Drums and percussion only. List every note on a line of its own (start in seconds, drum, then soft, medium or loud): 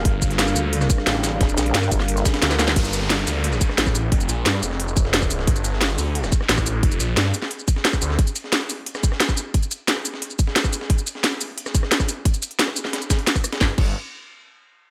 0.05 kick loud
0.05 closed hi-hat loud
0.05 closed hi-hat medium
0.22 kick medium
0.22 closed hi-hat medium
0.22 shaker medium
0.30 snare soft
0.30 closed hi-hat soft
0.39 snare loud
0.39 closed hi-hat loud
0.39 closed hi-hat medium
0.47 closed hi-hat soft
0.47 shaker soft
0.56 closed hi-hat medium
0.56 shaker medium
0.73 closed hi-hat medium
0.81 cross-stick medium
0.81 snare medium
0.81 shaker soft
0.90 kick loud
0.90 closed hi-hat medium
0.90 shaker medium
0.98 cross-stick soft
0.98 snare soft
1.07 snare loud
1.07 closed hi-hat loud
1.07 closed hi-hat medium
1.15 cross-stick medium
1.15 snare soft
1.24 snare loud
1.24 closed hi-hat medium
1.24 shaker medium
1.41 kick loud
1.41 snare loud
1.41 closed hi-hat loud
1.41 closed hi-hat medium
1.49 closed hi-hat soft
1.49 shaker soft
1.58 snare loud
1.58 closed hi-hat medium
1.58 shaker medium
1.66 closed hi-hat soft
1.75 snare loud
1.75 closed hi-hat medium
1.75 closed hi-hat loud
1.83 cross-stick medium
1.83 shaker soft
1.91 kick medium
1.91 closed hi-hat medium
1.91 shaker medium
2.00 snare soft
2.08 closed hi-hat loud
2.08 closed hi-hat medium
2.17 snare soft
2.17 closed hi-hat soft
2.17 shaker soft
2.25 kick loud
2.25 snare loud
2.25 closed hi-hat medium
2.25 shaker medium
2.34 snare loud
2.34 closed hi-hat medium
2.42 snare loud
2.42 closed hi-hat loud
2.42 closed hi-hat medium
2.51 snare loud
2.51 snare medium
2.51 closed hi-hat medium
2.51 shaker soft
2.59 snare medium
2.59 snare loud
2.59 closed hi-hat medium
2.59 shaker medium
2.68 snare medium
2.68 snare loud
2.68 closed hi-hat medium
2.76 kick loud
2.76 closed hi-hat medium
2.85 closed hi-hat soft
2.85 shaker soft
2.93 closed hi-hat medium
2.93 shaker medium
3.02 snare soft
3.10 snare loud
3.10 closed hi-hat loud
3.10 closed hi-hat medium
3.19 closed hi-hat soft
3.27 closed hi-hat medium
3.27 open hi-hat medium
3.27 shaker medium
3.44 closed hi-hat medium
3.53 cross-stick medium
3.53 snare medium
3.53 shaker soft
3.61 kick loud
3.61 closed hi-hat medium
3.61 shaker medium
3.69 cross-stick soft
3.69 snare soft
3.78 snare loud
3.78 closed hi-hat medium
3.78 closed hi-hat loud
3.86 kick medium
3.86 cross-stick medium
3.86 snare soft
3.86 shaker soft
3.95 closed hi-hat medium
3.95 shaker medium
4.12 kick loud
4.12 closed hi-hat medium
4.20 closed hi-hat soft
4.20 shaker soft
4.29 closed hi-hat medium
4.29 shaker medium
4.46 snare loud
4.46 closed hi-hat medium
4.54 cross-stick medium
4.63 closed hi-hat medium
4.63 shaker medium
4.71 snare soft
4.80 closed hi-hat medium
4.88 shaker soft
4.97 kick loud
4.97 closed hi-hat medium
4.97 shaker medium
5.05 snare soft
5.14 snare loud
5.14 closed hi-hat medium
5.22 kick medium
5.22 cross-stick medium
5.22 shaker soft
5.30 closed hi-hat medium
5.30 shaker medium
5.39 snare medium
5.47 kick loud
5.47 closed hi-hat medium
5.56 closed hi-hat soft
5.56 shaker soft
5.64 closed hi-hat medium
5.64 shaker medium
5.73 snare soft
5.81 snare loud
5.81 closed hi-hat medium
5.90 closed hi-hat soft
5.98 closed hi-hat medium
5.98 open hi-hat medium
5.98 shaker medium
6.15 closed hi-hat medium
6.24 cross-stick medium
6.24 snare medium
6.24 shaker soft
6.32 kick loud
6.32 closed hi-hat medium
6.32 shaker medium
6.41 cross-stick soft
6.41 snare soft
6.49 snare loud
6.49 closed hi-hat medium
6.58 kick medium
6.58 cross-stick soft
6.58 snare soft
6.58 shaker soft
6.66 closed hi-hat medium
6.66 shaker medium
6.83 kick loud
6.83 closed hi-hat medium
6.92 closed hi-hat soft
6.92 shaker soft
7.00 closed hi-hat medium
7.00 shaker medium
7.17 snare loud
7.17 closed hi-hat medium
7.25 cross-stick medium
7.34 closed hi-hat medium
7.34 shaker medium
7.42 snare soft
7.51 closed hi-hat medium
7.59 shaker soft
7.68 kick loud
7.68 closed hi-hat medium
7.68 shaker medium
7.76 snare soft
7.85 snare loud
7.85 closed hi-hat medium
7.93 kick medium
7.93 cross-stick soft
7.93 shaker soft
8.02 closed hi-hat medium
8.02 shaker medium
8.10 snare medium
8.19 kick loud
8.19 closed hi-hat medium
8.27 closed hi-hat soft
8.27 shaker soft
8.36 closed hi-hat medium
8.36 shaker medium
8.44 snare soft
8.53 snare loud
8.53 closed hi-hat medium
8.61 closed hi-hat soft
8.69 closed hi-hat medium
8.69 open hi-hat medium
8.69 shaker medium
8.86 closed hi-hat medium
8.95 cross-stick medium
8.95 snare medium
8.95 shaker soft
9.03 kick loud
9.03 closed hi-hat medium
9.03 shaker medium
9.12 cross-stick soft
9.12 snare soft
9.20 snare loud
9.20 closed hi-hat medium
9.29 kick medium
9.29 cross-stick soft
9.29 snare soft
9.29 shaker soft
9.37 closed hi-hat medium
9.37 shaker medium
9.54 kick loud
9.54 closed hi-hat medium
9.63 closed hi-hat soft
9.63 shaker soft
9.71 closed hi-hat medium
9.71 shaker medium
9.88 snare loud
9.88 closed hi-hat loud
9.88 closed hi-hat medium
9.97 cross-stick medium
10.05 closed hi-hat medium
10.05 shaker medium
10.14 snare soft
10.22 closed hi-hat medium
10.30 shaker soft
10.39 kick loud
10.39 closed hi-hat medium
10.39 shaker medium
10.47 snare soft
10.56 snare loud
10.56 closed hi-hat medium
10.64 kick medium
10.64 cross-stick soft
10.64 shaker soft
10.73 closed hi-hat medium
10.73 shaker medium
10.81 snare medium
10.90 kick loud
10.90 closed hi-hat medium
10.90 closed hi-hat loud
10.98 closed hi-hat soft
10.98 shaker soft
11.07 closed hi-hat medium
11.07 shaker medium
11.15 snare soft
11.24 snare loud
11.24 closed hi-hat medium
11.24 closed hi-hat loud
11.32 closed hi-hat soft
11.41 closed hi-hat medium
11.41 open hi-hat medium
11.41 shaker medium
11.58 closed hi-hat medium
11.66 cross-stick medium
11.66 snare medium
11.66 shaker soft
11.75 kick loud
11.75 closed hi-hat medium
11.75 shaker medium
11.83 cross-stick soft
11.83 snare soft
11.91 snare loud
11.91 closed hi-hat medium
12.00 kick medium
12.00 cross-stick soft
12.00 snare soft
12.00 shaker soft
12.08 closed hi-hat medium
12.08 shaker medium
12.25 kick loud
12.25 closed hi-hat medium
12.34 closed hi-hat soft
12.34 shaker soft
12.42 closed hi-hat medium
12.42 shaker medium
12.51 closed hi-hat soft
12.59 snare loud
12.59 closed hi-hat loud
12.59 closed hi-hat medium
12.68 cross-stick medium
12.76 closed hi-hat medium
12.76 shaker medium
12.85 snare soft
12.93 snare loud
12.93 closed hi-hat medium
12.93 closed hi-hat loud
13.02 closed hi-hat soft
13.02 shaker soft
13.10 kick loud
13.10 snare loud
13.10 closed hi-hat medium
13.10 shaker medium
13.19 closed hi-hat medium
13.27 snare loud
13.27 closed hi-hat medium
13.36 kick medium
13.36 cross-stick medium
13.36 closed hi-hat medium
13.36 shaker soft
13.44 cross-stick medium
13.44 closed hi-hat medium
13.44 shaker medium
13.53 snare loud
13.53 closed hi-hat medium
13.61 kick loud
13.61 snare medium
13.78 kick loud
13.78 crash medium